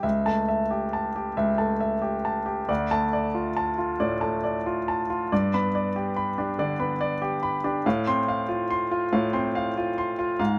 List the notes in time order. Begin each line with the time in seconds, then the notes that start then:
0.03 C#2 E5
0.26 A3 A5
0.48 E5
0.71 G4
0.93 A5
1.16 G4
1.37 C#2 E5
1.58 A3 A5
1.80 E5
2.02 G4
2.25 A5
2.46 G4
2.69 D2 D5
2.91 A3 A5
3.13 D5
3.35 F4
3.57 A5
3.78 F4
4.00 A2 D5
4.21 A3 A5
4.44 D5
4.66 F4
4.88 A5
5.10 F4
5.32 G2 D5
5.54 B3 B5
5.75 D5
5.96 G4
6.16 B5
6.38 D4 G4
6.59 D3 D5
6.80 B3 B5
7.01 D5
7.22 G4
7.43 B5
7.64 D4 G4
7.86 A2 F5
8.07 C4 C6
8.28 F5
8.49 F4
8.71 C6
8.91 F4
9.13 A2 F5
9.33 C4 C6
9.55 F5
9.77 F4
9.98 C6
10.19 F4
10.39 G#2 F5